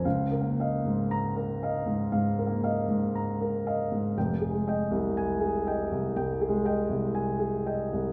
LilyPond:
<<
  \new Staff \with { instrumentName = "Grand piano" } { \time 4/4 \key f \minor \tempo 4 = 59 f''16 bes'16 <ees'' f''>16 aes,8 bes'16 <ees'' f''>16 aes,16 f''16 bes'16 <ees'' f''>16 aes,16 bes''16 bes'16 <ees'' f''>16 aes,16 | g''16 aes'16 <ees'' g''>16 c,8 aes'16 <ees'' g''>16 c,16 g''16 aes'16 <ees'' g''>16 c,16 aes''16 aes'16 <ees'' g''>16 c,16 | }
  \new Staff \with { instrumentName = "Grand piano" } { \clef bass \time 4/4 \key f \minor \tuplet 3/2 { des,8 bes4 } bes''8 r8 \tuplet 3/2 { aes,8 bes4 } r4 | \tuplet 3/2 { f,,8 aes4 } aes''8 r8 \tuplet 3/2 { c,8 aes4 } r4 | }
>>